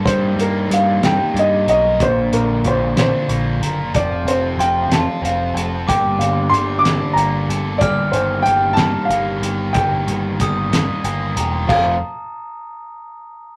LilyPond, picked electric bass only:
\new Staff \with { instrumentName = "Picked electric bass" } { \clef bass \time 6/8 \key f \mixolydian \tempo 4. = 62 g,8 g,8 g,8 g,16 r16 g,8 b,,8 | bes,,8 bes,,8 bes,,8 bes,,16 r16 bes,,8 ges,,8 | f,,8 f,,8 f,,8 f,,16 r16 f,,8 f,,8 | g,,8 g,,8 g,,8 g,,16 r16 g,,8 g,,8 |
g,,8 g,,8 g,,8 g,,16 r16 g,,8 g,,8 | g,,8 g,,8 g,,8 g,,16 r16 g,,8 e,,8 | f,,8 r2 r8 | }